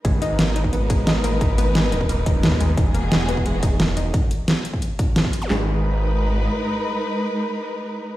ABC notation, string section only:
X:1
M:4/4
L:1/8
Q:1/4=176
K:G#m
V:1 name="String section"
[G,DAB]8- | [G,DAB]8 | [E,B,FG]8 | z8 |
[G,DAB]8- | [G,DAB]8 |]